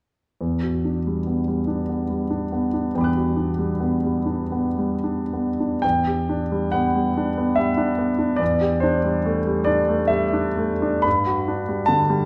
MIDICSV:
0, 0, Header, 1, 2, 480
1, 0, Start_track
1, 0, Key_signature, 1, "minor"
1, 0, Tempo, 884956
1, 220, Time_signature, 3, 2, 24, 8
1, 693, Tempo, 843882
1, 2133, Tempo, 964630
1, 2613, Tempo, 1060071
1, 3093, Tempo, 898204
1, 3573, Tempo, 845070
1, 5493, Tempo, 943396
1, 5973, Tempo, 833333
1, 6663, End_track
2, 0, Start_track
2, 0, Title_t, "Grand piano"
2, 0, Program_c, 0, 0
2, 220, Note_on_c, 0, 40, 34
2, 309, Control_c, 0, 64, 127
2, 340, Note_on_c, 0, 66, 31
2, 460, Note_on_c, 0, 62, 29
2, 532, Note_off_c, 0, 66, 0
2, 580, Note_on_c, 0, 55, 29
2, 646, Note_off_c, 0, 62, 0
2, 689, Note_on_c, 0, 59, 30
2, 763, Note_off_c, 0, 55, 0
2, 808, Note_on_c, 0, 55, 31
2, 877, Note_off_c, 0, 59, 0
2, 919, Note_on_c, 0, 62, 32
2, 995, Note_off_c, 0, 55, 0
2, 1042, Note_on_c, 0, 59, 32
2, 1111, Note_off_c, 0, 62, 0
2, 1161, Note_on_c, 0, 55, 31
2, 1236, Note_off_c, 0, 59, 0
2, 1277, Note_on_c, 0, 62, 36
2, 1356, Note_off_c, 0, 55, 0
2, 1402, Note_on_c, 0, 59, 39
2, 1475, Note_off_c, 0, 62, 0
2, 1523, Note_on_c, 0, 62, 37
2, 1596, Note_off_c, 0, 59, 0
2, 1622, Note_off_c, 0, 40, 0
2, 1644, Note_on_c, 0, 40, 40
2, 1644, Note_on_c, 0, 79, 27
2, 1660, Note_on_c, 0, 83, 26
2, 1678, Note_on_c, 0, 86, 28
2, 1696, Note_on_c, 0, 90, 28
2, 1714, Note_off_c, 0, 62, 0
2, 1767, Note_on_c, 0, 66, 40
2, 1880, Note_on_c, 0, 62, 35
2, 1958, Note_off_c, 0, 66, 0
2, 2005, Note_on_c, 0, 55, 37
2, 2079, Note_off_c, 0, 62, 0
2, 2129, Note_on_c, 0, 59, 41
2, 2200, Note_off_c, 0, 55, 0
2, 2247, Note_on_c, 0, 55, 36
2, 2315, Note_off_c, 0, 59, 0
2, 2357, Note_on_c, 0, 62, 37
2, 2436, Note_off_c, 0, 55, 0
2, 2487, Note_on_c, 0, 59, 40
2, 2557, Note_off_c, 0, 62, 0
2, 2617, Note_on_c, 0, 55, 36
2, 2683, Note_off_c, 0, 59, 0
2, 2732, Note_on_c, 0, 62, 36
2, 2810, Note_off_c, 0, 55, 0
2, 2866, Note_on_c, 0, 59, 38
2, 2934, Note_off_c, 0, 62, 0
2, 2987, Note_on_c, 0, 62, 38
2, 3053, Note_off_c, 0, 59, 0
2, 3074, Note_off_c, 0, 40, 0
2, 3074, Note_off_c, 0, 79, 0
2, 3080, Note_off_c, 0, 83, 0
2, 3086, Note_on_c, 0, 79, 60
2, 3087, Note_off_c, 0, 86, 0
2, 3095, Note_off_c, 0, 62, 0
2, 3095, Note_off_c, 0, 90, 0
2, 3097, Note_on_c, 0, 40, 34
2, 3102, Control_c, 0, 64, 0
2, 3192, Control_c, 0, 64, 127
2, 3221, Note_on_c, 0, 67, 31
2, 3338, Note_on_c, 0, 62, 28
2, 3409, Note_off_c, 0, 67, 0
2, 3458, Note_on_c, 0, 55, 30
2, 3526, Note_off_c, 0, 62, 0
2, 3564, Note_on_c, 0, 78, 61
2, 3568, Note_off_c, 0, 79, 0
2, 3575, Note_on_c, 0, 59, 32
2, 3649, Note_off_c, 0, 55, 0
2, 3699, Note_on_c, 0, 55, 29
2, 3771, Note_off_c, 0, 59, 0
2, 3823, Note_on_c, 0, 62, 29
2, 3892, Note_off_c, 0, 55, 0
2, 3939, Note_on_c, 0, 59, 31
2, 4012, Note_off_c, 0, 62, 0
2, 4041, Note_on_c, 0, 76, 58
2, 4052, Note_off_c, 0, 78, 0
2, 4053, Note_on_c, 0, 55, 29
2, 4126, Note_off_c, 0, 59, 0
2, 4165, Note_on_c, 0, 62, 34
2, 4240, Note_off_c, 0, 55, 0
2, 4283, Note_on_c, 0, 59, 33
2, 4354, Note_off_c, 0, 62, 0
2, 4399, Note_on_c, 0, 62, 32
2, 4473, Note_off_c, 0, 59, 0
2, 4500, Note_on_c, 0, 74, 56
2, 4503, Note_off_c, 0, 40, 0
2, 4516, Note_off_c, 0, 76, 0
2, 4516, Note_on_c, 0, 40, 37
2, 4521, Note_off_c, 0, 62, 0
2, 4533, Control_c, 0, 64, 0
2, 4618, Control_c, 0, 64, 127
2, 4641, Note_on_c, 0, 67, 34
2, 4749, Note_on_c, 0, 72, 49
2, 4754, Note_off_c, 0, 74, 0
2, 4765, Note_on_c, 0, 62, 31
2, 4838, Note_off_c, 0, 67, 0
2, 4885, Note_on_c, 0, 55, 31
2, 4961, Note_off_c, 0, 62, 0
2, 5006, Note_on_c, 0, 57, 33
2, 5081, Note_off_c, 0, 55, 0
2, 5129, Note_on_c, 0, 55, 34
2, 5201, Note_off_c, 0, 57, 0
2, 5228, Note_on_c, 0, 74, 61
2, 5240, Note_on_c, 0, 62, 32
2, 5242, Note_off_c, 0, 72, 0
2, 5320, Note_off_c, 0, 55, 0
2, 5363, Note_on_c, 0, 57, 34
2, 5437, Note_off_c, 0, 62, 0
2, 5472, Note_on_c, 0, 76, 57
2, 5480, Note_off_c, 0, 74, 0
2, 5484, Note_on_c, 0, 55, 30
2, 5556, Note_off_c, 0, 57, 0
2, 5605, Note_on_c, 0, 62, 35
2, 5674, Note_off_c, 0, 55, 0
2, 5726, Note_on_c, 0, 57, 34
2, 5804, Note_off_c, 0, 62, 0
2, 5854, Note_on_c, 0, 62, 37
2, 5924, Note_off_c, 0, 57, 0
2, 5948, Note_off_c, 0, 40, 0
2, 5955, Note_on_c, 0, 83, 62
2, 5963, Note_off_c, 0, 76, 0
2, 5971, Note_on_c, 0, 43, 40
2, 5972, Note_off_c, 0, 62, 0
2, 5982, Control_c, 0, 64, 0
2, 6071, Control_c, 0, 64, 127
2, 6091, Note_on_c, 0, 66, 38
2, 6218, Note_on_c, 0, 62, 32
2, 6288, Note_off_c, 0, 66, 0
2, 6336, Note_on_c, 0, 55, 32
2, 6409, Note_off_c, 0, 62, 0
2, 6435, Note_on_c, 0, 81, 69
2, 6448, Note_off_c, 0, 83, 0
2, 6450, Note_on_c, 0, 50, 38
2, 6525, Note_off_c, 0, 55, 0
2, 6572, Note_on_c, 0, 55, 35
2, 6640, Note_off_c, 0, 50, 0
2, 6663, Note_off_c, 0, 43, 0
2, 6663, Note_off_c, 0, 55, 0
2, 6663, Note_off_c, 0, 81, 0
2, 6663, End_track
0, 0, End_of_file